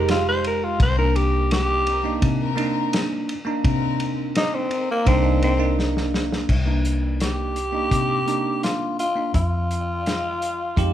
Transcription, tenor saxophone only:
0.11 F4
0.28 C5
0.47 A#4
0.64 F4
0.82 C5
0.98 A#4
1.16 G4
1.52 G4
4.37 D#4
4.55 C4
4.91 A#3
5.07 C4
5.44 C4
7.21 G4
8.63 F4
8.99 F4
9.35 F4

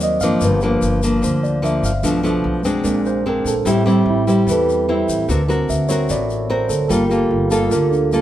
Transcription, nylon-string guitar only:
Already playing: D#3 F#3 A#3 C4
0.23 F3 A#3 D4
0.42 G2
0.62 F3 A#3 D4
1.03 F3 A#3 D4
1.22 D3
1.62 F3 A#3 D4
2.03 B2 F3 A3 D4
2.23 F3 A3 D4
2.65 G#3 C4 D4
2.84 A#2
3.26 G#3 C4 D4
3.66 A2 G3 C4 E4
3.86 G3 C4 E4
4.27 G3 C4 E4
4.49 E3
4.89 G3 C4 E4
5.29 D3 C4 F#4 A#4
5.48 C4 F#4 A#4
5.89 C4 F#4 A#4
6.10 A2
6.50 C4 F#4 A#4
6.89 G3 A#3 F4 A4
7.11 A#3 F4 A4
7.51 A#3 F4 A4
7.72 D3
8.13 A#3 F4 A4

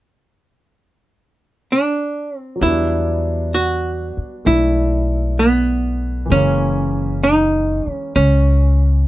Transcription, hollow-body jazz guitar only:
1.72 D4
2.38 C4
2.62 E4
3.54 F#4
4.47 E4
5.39 B3
6.32 C#4
7.24 D#4
7.92 C#4
8.16 C#4

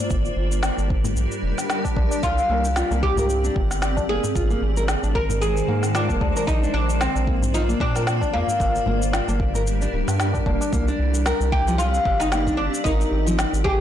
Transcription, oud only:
2.23 F4
3.03 G4
4.09 G#4
5.15 A#4
5.42 G#4
5.95 D4
6.47 D#4
6.74 D4
7.01 C4
7.54 D#4
7.81 D4
8.33 A#3
11.52 G4
11.78 F4
12.20 D#4
12.57 D4
12.84 D#4
13.64 G4

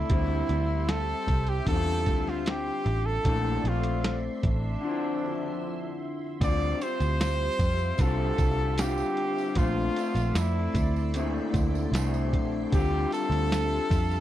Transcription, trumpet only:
Already playing: E4
0.90 A4
1.49 G4
1.69 A4
2.30 F4
2.49 G4
3.06 A4
3.68 F4
4.47 D4
6.44 D5
6.82 C5
8.01 A4
8.80 G4
9.57 F4
10.37 E4
12.75 G4
13.13 A4

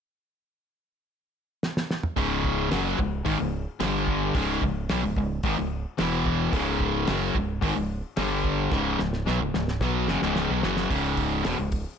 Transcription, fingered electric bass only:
2.17 C#1
2.72 F#1
2.99 C#1
3.26 G#1
3.40 C#1
3.80 G1
4.35 C#1
4.62 C#1
4.90 B1
5.03 C#1
5.16 C#1
5.44 G#1
5.60 C#1
6.00 E1
6.53 C#1
7.09 F#1
7.35 C#1
7.62 G#1
7.76 C#1
8.17 G1
8.72 C#1
9.00 C#1
9.28 B1
9.41 C#1
9.54 C#1
9.81 B1
10.09 F#1
10.22 C#1
10.50 B1
10.65 F#1
10.91 C#1
11.46 E1
11.59 C#1

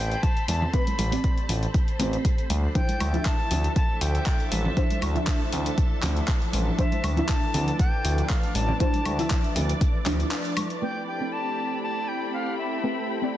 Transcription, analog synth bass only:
Already playing: A1
0.48 E2
0.99 A1
1.49 A1
2.00 A1
2.50 D2
3.00 D2
3.51 D2
4.01 D2
4.52 A1
5.02 D2
5.53 D2
6.03 D2
6.53 A1
7.04 D2
7.54 D2
8.05 D2
8.55 A1
9.05 D2
9.56 D2
10.06 D2

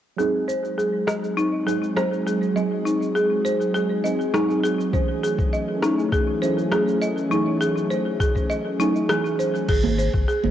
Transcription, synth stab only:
0.16 F#3 G#3 C4 D#4
0.20 G#4
1.66 F#3 G#3 C4 D#4 G#4
1.95 F#3 G#3 C4 D#4 G#4
2.54 F#3 G#3 C4 D#4 G#4
4.03 F#3 G#3 C4 D#4 G#4
4.33 F#3 G#3 C4 D#4 G#4
4.91 E3 F#3 A3 C#4 G#4
6.41 F#3 A3 C#4 E4 G#4
6.71 F#3 A3 C#4 E4 G#4
7.29 E3 F#3 A3 C#4
7.33 G#4
8.79 F#3 A3 C#4 E4 G#4
9.09 E3 F#3 A3 C#4 G#4

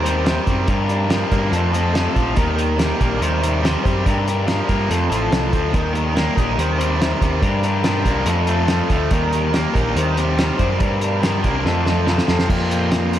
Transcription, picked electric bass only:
Already playing: D#2
0.47 F#2
0.68 G2
1.32 G2
1.52 F2
2.16 A#1
2.38 D#2
3.01 A#1
3.21 D#2
3.85 F#2
4.06 G2
4.69 G2
4.90 F2
5.10 A1
5.32 C2
5.53 D2
5.74 D#2
6.37 A#1
6.58 D#2
7.22 D#2
7.43 G2
8.05 C2
8.26 F2
8.90 D2
9.11 D#2
9.75 A#1
9.96 D#2
10.59 F#2
10.81 G2
11.44 C2
11.65 F2
12.29 F2
12.49 F2

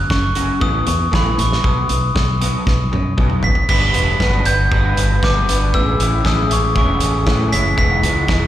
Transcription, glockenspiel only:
Already playing: F#6
0.10 C#6
0.62 D#6
0.88 C#6
1.15 B5
1.40 C#6
1.65 D#6
3.44 B6
3.70 B6
4.46 G6
5.24 D6
5.75 E6
6.26 D#6
6.53 C#6
6.78 C#6
7.52 B6
7.79 B6

